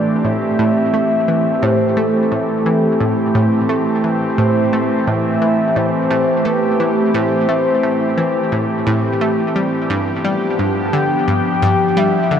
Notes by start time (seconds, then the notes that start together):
Already playing: E3 A3 C4 G4 D5
0.25 A2 E5
0.59 A2
0.94 A3
1.28 E3
1.63 A2 C5
1.97 A3 A4
2.32 A2
2.66 E3
3.00 A2
3.35 A2
3.69 A3
4.04 E3
4.38 A2 C5
4.73 A3
5.07 A2 E5
5.42 E3
5.76 A2 C5
6.11 A2
6.45 A3 B4
6.80 E3
7.14 A2 C5
7.49 A3
7.83 A2
8.18 E3
8.52 A2
8.87 A2
9.21 A3
9.56 G3
9.90 G2 F3 B3 D4
10.24 G3
10.59 G2
10.87 A5
10.93 D3 G5
11.28 G2 G5
11.62 G2
11.97 G3 E5
12.31 D3